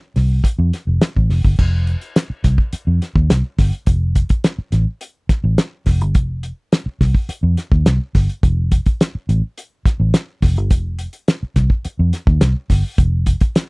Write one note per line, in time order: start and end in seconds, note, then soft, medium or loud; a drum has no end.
0.16 0.40 C2 medium
0.16 snare soft
0.16 open hi-hat soft
0.44 kick medium
0.44 closed hi-hat medium
0.59 0.70 F2 loud
0.73 snare soft
0.73 closed hi-hat medium
0.87 0.99 F1 medium
1.01 snare loud
1.01 closed hi-hat medium
1.16 1.28 A1 medium
1.16 kick medium
1.29 1.42 F1 medium
1.29 snare soft
1.29 open hi-hat medium
1.45 1.56 G1 medium
1.45 kick medium
1.59 1.94 F1 medium
1.59 kick loud
1.59 crash medium
1.87 closed hi-hat medium
2.01 closed hi-hat medium
2.16 snare loud
2.16 closed hi-hat medium
2.30 muted fingered electric bass stroke soft
2.44 2.56 C2 medium
2.44 kick medium
2.44 snare soft
2.44 closed hi-hat medium
2.58 kick medium
2.73 muted fingered electric bass stroke soft
2.73 closed hi-hat loud
2.87 2.99 F2 medium
3.02 snare soft
3.02 closed hi-hat medium
3.15 3.27 D#2 medium
3.15 kick loud
3.30 3.42 C2 medium
3.30 snare loud
3.30 closed hi-hat medium
3.58 3.70 G1 medium
3.58 kick medium
3.58 snare soft
3.58 open hi-hat medium
3.73 closed hi-hat soft
3.86 4.22 F1 medium
3.86 kick loud
3.86 closed hi-hat medium
4.15 kick medium
4.15 closed hi-hat medium
4.29 kick loud
4.29 closed hi-hat medium
4.44 snare loud
4.44 closed hi-hat medium
4.58 muted fingered electric bass stroke medium
4.72 4.84 A1 loud
4.72 snare soft
4.72 closed hi-hat medium
5.01 closed hi-hat medium
5.29 muted fingered electric bass stroke medium
5.29 kick loud
5.29 snare soft
5.29 closed hi-hat medium
5.44 5.56 A1 loud
5.58 snare loud
5.58 closed hi-hat loud
5.86 6.01 F1 medium
5.86 kick medium
5.86 snare soft
5.86 open hi-hat medium
6.01 6.15 G1 medium
6.01 closed hi-hat soft
6.15 6.50 F1 medium
6.15 kick loud
6.15 closed hi-hat medium
6.43 closed hi-hat medium
6.72 snare loud
6.72 closed hi-hat medium
6.86 muted fingered electric bass stroke soft
7.01 7.13 C2 medium
7.01 kick medium
7.01 snare soft
7.01 open hi-hat soft
7.15 kick medium
7.29 muted fingered electric bass stroke soft
7.29 closed hi-hat loud
7.43 7.55 F2 loud
7.57 snare soft
7.57 closed hi-hat medium
7.72 7.84 D#2 loud
7.72 kick loud
7.86 7.98 C2 medium
7.86 snare loud
7.86 closed hi-hat medium
8.15 8.27 G1 medium
8.15 kick medium
8.15 snare soft
8.15 open hi-hat medium
8.29 closed hi-hat soft
8.43 8.79 F1 medium
8.43 kick loud
8.43 closed hi-hat medium
8.72 kick medium
8.72 closed hi-hat medium
8.86 kick loud
8.86 closed hi-hat soft
9.01 snare loud
9.01 closed hi-hat medium
9.15 muted fingered electric bass stroke soft
9.29 9.40 A1 loud
9.29 closed hi-hat medium
9.58 closed hi-hat loud
9.86 muted fingered electric bass stroke soft
9.86 kick loud
9.86 snare soft
9.86 closed hi-hat medium
10.00 10.11 A1 medium
10.14 snare loud
10.14 closed hi-hat loud
10.42 10.57 F1 loud
10.42 kick medium
10.42 snare soft
10.42 open hi-hat medium
10.57 10.71 G1 medium
10.57 closed hi-hat soft
10.70 11.06 F1 medium
10.70 kick loud
10.70 closed hi-hat medium
10.99 closed hi-hat medium
11.13 closed hi-hat medium
11.28 snare loud
11.28 closed hi-hat medium
11.43 muted fingered electric bass stroke soft
11.56 11.68 C2 medium
11.56 kick medium
11.56 snare soft
11.56 closed hi-hat medium
11.70 kick medium
11.85 muted fingered electric bass stroke soft
11.85 closed hi-hat loud
11.99 12.11 F2 medium
12.13 snare soft
12.13 closed hi-hat medium
12.27 12.39 D#2 loud
12.27 kick loud
12.41 12.53 C2 medium
12.41 snare loud
12.41 closed hi-hat medium
12.70 12.82 G1 medium
12.70 kick medium
12.70 snare soft
12.70 open hi-hat medium
12.98 13.34 F1 medium
12.98 kick loud
12.98 closed hi-hat medium
13.26 kick medium
13.26 closed hi-hat medium
13.41 kick loud
13.41 closed hi-hat medium
13.56 snare loud
13.56 closed hi-hat medium